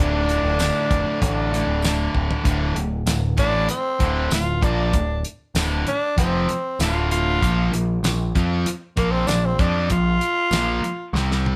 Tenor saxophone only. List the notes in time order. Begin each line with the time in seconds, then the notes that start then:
Already playing: D4
1.22 D4
3.39 D4
3.70 C4
4.34 F4
4.63 D4
5.88 D4
6.18 C4
6.81 F4
7.12 F4
8.97 A#3
9.12 C4
9.27 D4
9.46 C4
9.60 D4
9.92 F4